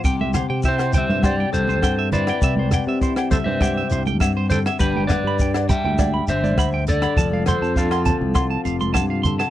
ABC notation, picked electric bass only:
X:1
M:4/4
L:1/16
Q:1/4=101
K:C
V:1 name="Picked electric bass" clef=bass
C,,3 C,4 G,,3 C,,2 G,,4 | C,,3 C,4 G,,3 C,,2 G,,4 | G,,,3 G,,4 D,,3 G,,,2 D,,4 | F,,,3 F,,4 C,,3 F,,,2 G,,4 |]